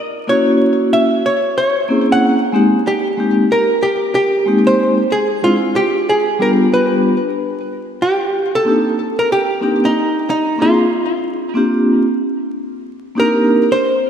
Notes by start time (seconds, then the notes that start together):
0.27 A#3 C#4 E4 F#4 C#5
0.93 E5
1.26 C#5
1.58 C#5
1.89 A#3 C4 C#4 E4 G#4
1.98 C5
2.12 F#5
2.52 G#3 A#3 C4 D#4 G4
2.87 G4
3.17 G#3 A#3 C4 D#4 G4
3.52 A#4
3.83 G4
4.15 G4
4.46 G#3 A#3 C4 D#4 G4
4.67 C5
5.12 G#4
5.42 G#3 C4 D4 E4 F4
5.76 G4
6.09 G#4
6.39 G3 B3 D4 F4 G4 A#4
6.72 G3 B3 D4 F4 G4 B4
8.02 G4
8.55 A4
8.65 A#3 C4 D4 D#4 G4
9.19 A#4
9.32 G4
9.61 A#3 C4 D4 D#4 G4
9.85 D#4
10.30 D#4
10.58 A#3 C4 D4 F4 G#4
10.62 F4
11.54 A#3 C4 D4 F4 G4
13.15 A#3 C4 D4 D#4 G4
13.19 A#4
13.72 C5